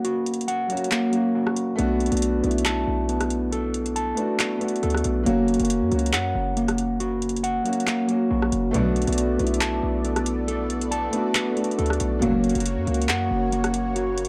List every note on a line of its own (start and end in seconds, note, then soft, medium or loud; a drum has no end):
0.00 0.67 F#3 loud
0.00 0.69 A#3 loud
0.00 0.90 A#3 medium
0.00 0.71 C#4 loud
0.00 0.72 F#4 loud
0.00 0.47 F#5 loud
0.05 1.34 F#4 loud
0.05 closed hi-hat medium
0.26 closed hi-hat medium
0.26 open hi-hat medium
0.34 closed hi-hat medium
0.41 closed hi-hat medium
0.48 1.78 F#5 medium
0.48 closed hi-hat medium
0.67 0.99 F#3 medium
0.67 1.00 A#3 medium
0.67 1.01 C#4 medium
0.67 closed hi-hat medium
0.72 1.02 F#4 loud
0.77 closed hi-hat medium
0.84 closed hi-hat medium
0.92 1.79 A#3 medium
0.92 cross-stick medium
0.92 clap loud
0.92 closed hi-hat medium
1.10 1.57 F#3 medium
1.10 1.58 A#3 medium
1.10 1.59 C#4 medium
1.10 closed hi-hat medium
1.15 1.60 F#4 medium
1.35 1.79 F#4 medium
1.47 cross-stick medium
1.56 closed hi-hat medium
1.76 2.10 B1 loud
1.76 2.00 A3 loud
1.76 2.01 B3 loud
1.76 3.08 B3 medium
1.76 2.02 D4 loud
1.76 closed hi-hat medium
1.81 2.03 F#4 loud
2.00 closed hi-hat soft
2.06 2.33 A3 medium
2.06 closed hi-hat medium
2.11 2.42 B1 loud
2.11 2.34 B3 medium
2.11 2.35 D4 medium
2.11 2.36 F#4 loud
2.11 closed hi-hat medium
2.17 closed hi-hat medium
2.22 closed hi-hat medium
2.41 2.85 B1 loud
2.41 3.04 A3 medium
2.41 3.04 B3 medium
2.41 3.05 D4 medium
2.41 closed hi-hat soft
2.46 3.06 E4 loud
2.51 closed hi-hat medium
2.58 closed hi-hat medium
2.65 3.95 A5 loud
2.65 cross-stick medium
2.65 clap loud
2.65 closed hi-hat medium
2.87 4.14 B1 loud
3.09 4.38 B3 medium
3.09 closed hi-hat medium
3.21 cross-stick medium
3.21 closed hi-hat medium
3.30 closed hi-hat medium
3.52 4.82 A4 loud
3.52 closed hi-hat medium
3.74 closed hi-hat medium
3.74 open hi-hat medium
3.86 closed hi-hat medium
3.96 5.26 A5 loud
3.96 closed hi-hat medium
4.15 4.47 A3 medium
4.15 4.48 B3 medium
4.15 4.49 D4 medium
4.15 closed hi-hat medium
4.20 4.50 F#4 loud
4.39 5.26 B3 medium
4.39 cross-stick medium
4.39 clap loud
4.39 closed hi-hat medium
4.58 5.06 A3 medium
4.58 5.06 B3 medium
4.58 5.07 D4 medium
4.58 closed hi-hat medium
4.64 5.08 F#4 medium
4.68 closed hi-hat medium
4.76 closed hi-hat medium
4.83 5.04 D2 loud
4.83 5.26 A4 medium
4.83 closed hi-hat soft
4.90 closed hi-hat soft
4.94 cross-stick medium
4.94 closed hi-hat medium
5.04 5.25 B1 loud
5.04 closed hi-hat medium
5.23 5.58 F#1 loud
5.23 5.48 F#3 loud
5.23 5.49 A#3 loud
5.23 6.56 A#3 loud
5.23 5.50 C#4 loud
5.23 closed hi-hat medium
5.29 5.51 F#4 loud
5.48 closed hi-hat soft
5.54 5.81 F#3 medium
5.54 closed hi-hat medium
5.59 5.83 F#1 loud
5.59 5.82 A#3 medium
5.59 5.83 C#4 medium
5.59 5.84 F#4 loud
5.59 closed hi-hat medium
5.65 closed hi-hat medium
5.70 closed hi-hat medium
5.81 5.91 F#2 loud
5.89 6.15 C#2 loud
5.89 6.52 F#3 medium
5.89 6.52 A#3 medium
5.89 6.53 C#4 medium
5.89 closed hi-hat soft
5.94 6.54 F#4 loud
5.99 closed hi-hat medium
6.06 closed hi-hat medium
6.13 6.34 F#2 loud
6.13 7.42 F#5 loud
6.13 cross-stick medium
6.13 clap loud
6.13 closed hi-hat medium
6.35 7.61 F#1 loud
6.57 7.86 A#3 medium
6.57 closed hi-hat medium
6.68 cross-stick medium
6.68 closed hi-hat medium
6.78 closed hi-hat medium
7.00 8.30 F#4 loud
7.00 closed hi-hat medium
7.22 closed hi-hat medium
7.22 open hi-hat medium
7.29 closed hi-hat medium
7.36 closed hi-hat medium
7.44 8.74 F#5 medium
7.44 closed hi-hat medium
7.63 7.95 F#3 medium
7.63 7.96 A#3 medium
7.63 7.97 C#4 medium
7.63 closed hi-hat medium
7.68 7.98 F#4 loud
7.73 closed hi-hat medium
7.80 closed hi-hat medium
7.87 8.74 A#3 medium
7.87 cross-stick medium
7.87 clap loud
7.87 closed hi-hat medium
8.05 8.53 F#3 medium
8.05 8.54 A#3 medium
8.05 8.55 C#4 medium
8.05 closed hi-hat medium
8.11 8.56 F#4 medium
8.31 8.52 A#1 loud
8.31 8.74 F#4 medium
8.42 cross-stick medium
8.52 8.73 F#1 loud
8.52 closed hi-hat medium
8.71 9.06 B1 loud
8.71 9.15 D2 medium
8.71 9.15 B2 loud
8.71 9.15 F#3 loud
8.71 8.96 A3 loud
8.71 8.96 B3 loud
8.71 12.18 B3 medium
8.71 10.04 B3 loud
8.71 8.97 D4 loud
8.71 12.19 A4 medium
8.71 12.18 D5 medium
8.71 closed hi-hat medium
8.77 8.98 F#4 loud
8.96 closed hi-hat soft
9.02 9.29 A3 medium
9.02 closed hi-hat medium
9.07 9.38 B1 loud
9.07 9.30 B3 medium
9.07 9.31 D4 medium
9.07 9.32 F#4 loud
9.07 closed hi-hat medium
9.13 closed hi-hat medium
9.18 closed hi-hat medium
9.37 9.81 B1 loud
9.37 9.99 A3 medium
9.37 10.00 B3 medium
9.37 10.01 D4 medium
9.37 closed hi-hat soft
9.42 10.02 E4 loud
9.47 closed hi-hat medium
9.54 closed hi-hat medium
9.61 10.90 A5 loud
9.61 cross-stick medium
9.61 clap loud
9.61 closed hi-hat medium
9.83 11.09 B1 loud
10.05 11.34 B3 medium
10.05 closed hi-hat medium
10.16 cross-stick medium
10.16 closed hi-hat medium
10.26 closed hi-hat medium
10.48 11.77 A4 loud
10.48 closed hi-hat medium
10.70 closed hi-hat medium
10.70 open hi-hat medium
10.81 closed hi-hat medium
10.91 12.22 A5 loud
10.91 closed hi-hat medium
11.11 11.43 A3 medium
11.11 11.44 B3 medium
11.11 11.45 D4 medium
11.11 closed hi-hat medium
11.16 11.46 F#4 loud
11.35 12.22 B3 medium
11.35 cross-stick medium
11.35 clap loud
11.35 closed hi-hat medium
11.54 12.01 A3 medium
11.54 12.02 B3 medium
11.54 12.03 D4 medium
11.54 closed hi-hat medium
11.59 12.04 F#4 medium
11.64 closed hi-hat medium
11.71 closed hi-hat medium
11.78 11.99 D2 loud
11.78 12.22 A4 medium
11.78 closed hi-hat medium
11.86 closed hi-hat medium
11.90 cross-stick medium
11.90 closed hi-hat medium
12.00 12.21 B1 loud
12.00 closed hi-hat medium
12.19 12.54 F#1 loud
12.19 12.63 C#2 loud
12.19 12.63 A#2 loud
12.19 12.43 F#3 loud
12.19 12.63 F#3 loud
12.19 12.44 A#3 loud
12.19 13.51 A#3 loud
12.19 14.28 A#3 medium
12.19 12.45 C#4 loud
12.19 14.28 F#4 medium
12.19 14.28 C#5 medium
12.19 closed hi-hat medium
12.25 12.46 F#4 loud
12.44 closed hi-hat soft
12.49 12.77 F#3 medium
12.49 closed hi-hat medium
12.55 12.78 F#1 loud
12.55 12.78 A#3 medium
12.55 12.79 C#4 medium
12.55 12.80 F#4 loud
12.55 closed hi-hat medium
12.60 closed hi-hat medium
12.66 closed hi-hat loud
12.77 12.87 F#2 loud
12.85 13.10 C#2 loud
12.85 13.47 F#3 medium
12.85 13.48 A#3 medium
12.85 13.49 C#4 medium
12.85 closed hi-hat soft
12.90 13.50 F#4 loud
12.94 closed hi-hat medium
13.02 closed hi-hat medium
13.09 13.30 F#2 loud
13.09 14.28 F#5 loud
13.09 cross-stick medium
13.09 clap loud
13.09 closed hi-hat medium
13.31 14.28 F#1 loud
13.52 14.28 A#3 medium
13.52 closed hi-hat medium
13.64 cross-stick medium
13.64 closed hi-hat medium
13.74 closed hi-hat medium
13.96 14.28 F#4 loud
13.96 closed hi-hat medium
14.18 closed hi-hat medium
14.18 open hi-hat medium
14.25 closed hi-hat medium